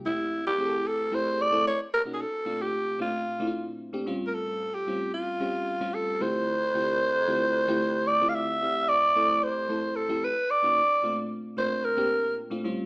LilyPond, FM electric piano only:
\new Staff \with { instrumentName = "FM electric piano" } { \time 4/4 \key f \major \tempo 4 = 112 <f, a c' e' g'>8. r16 <f, a c' e' aes' a'>8. r16 <f, a c' e' g'>8 r16 <f, a c' e' a'>16 r8. <b, ais cis' dis' fis'>16 | r8 <bes, a c' d' f'>8. r16 <bes, a c' d' f'>8 r16 <bes, a c' d' e' f'>8. r16 <bes, a c' d' g'>16 <a, g bis cis' eis'>8~ | <a, g bis cis' eis'>8. r16 <a, g bis cis' eis'>8. r16 <a, g bis cis' g'>8 r16 <a, g bis cis' eis'>8. <d a c' e' f' g'>8~ | <d a c' e' f' g'>16 r16 <d a c' e' f' g'>8. r16 <d a c' e' f' g'>8 r16 <d a c' e' f' g'>8. r16 <d a c' e' f' g'>8 r16 |
<f, a c' e' g'>8. r16 <f, a c' e' a'>8. r16 <f, a c' e' a'>8 r16 <f, a c' e' g'>16 r8. <b, ais cis' dis' fis'>16 | r8 <bes, a c' d' f'>8. r16 <bes, a c' d' f'>8 r16 <bes, bes c' d' g'>8. r16 <bes, a c' d' f'>16 <a, g bis cis' eis'>8 | }